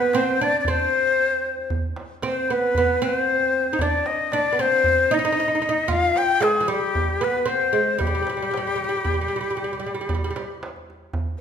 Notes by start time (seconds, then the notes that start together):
Already playing: B3 B4
0.13 C4 C5, darbuka tek
0.27 darbuka ka
0.39 D4 D5, darbuka ka
0.53 darbuka ka
0.60 D5
0.65 C4, darbuka dum
0.70 C5
0.78 darbuka ka
0.91 darbuka ka
1.18 darbuka ka
1.45 darbuka ka
1.58 darbuka ka
1.70 darbuka dum
1.96 darbuka tek
2.22 C4, darbuka tek
2.28 C5
2.36 darbuka ka
2.48 B3, darbuka ka
2.53 B4
2.61 darbuka ka
2.75 B3, darbuka dum
2.89 darbuka ka
3.02 C4 B4
3.15 C5, darbuka ka
3.28 darbuka ka
3.53 darbuka ka
3.67 darbuka ka
3.73 D#4
3.79 D4 D5, darbuka dum
3.93 darbuka ka
4.06 D#5, darbuka tek
4.32 D4 D5, darbuka tek
4.46 darbuka ka
4.53 B3
4.58 C4 C5, darbuka ka
4.72 darbuka ka
4.84 darbuka dum
4.97 darbuka ka
5.11 D#4 D#5
5.19 D#4
5.25 D#4, darbuka ka
5.32 D#4
5.37 D#4, darbuka ka
5.48 D#4
5.55 D#4
5.62 D#4, darbuka ka
5.69 D#4
5.77 darbuka ka
5.88 F4 F5, darbuka dum
6.02 darbuka ka
6.16 G5, darbuka tek
6.40 G#3 G#4, darbuka tek
6.56 darbuka ka
6.60 F3
6.68 G3 G4, darbuka ka
6.95 darbuka dum
7.10 darbuka ka
7.21 B3 B4
7.36 darbuka ka
7.46 C4 C5
7.50 darbuka ka
7.73 G#3, darbuka ka
7.89 darbuka ka
7.99 G3 G4, darbuka dum
8.07 G3
8.15 G3, darbuka ka
8.22 G3
8.27 G3, darbuka tek
8.37 G3
8.43 G3
8.51 G3, darbuka tek
8.57 G3
8.67 G3, darbuka ka
8.76 G3
8.80 darbuka ka
8.84 G3
8.89 G3
8.97 G3
9.04 G3, darbuka dum
9.14 G3
9.19 G3, darbuka ka
9.28 G3
9.36 G3
9.41 G3
9.51 G3
9.57 G3
9.64 G3
9.73 G3
9.79 G3
9.84 G3, darbuka ka
9.94 G3, darbuka ka
10.01 G3
10.09 G3, darbuka dum
10.14 G3
10.23 G3, darbuka ka
10.30 G3
10.36 G3, darbuka tek
10.63 darbuka tek
10.76 darbuka ka
10.90 darbuka ka
11.13 darbuka dum
11.27 darbuka ka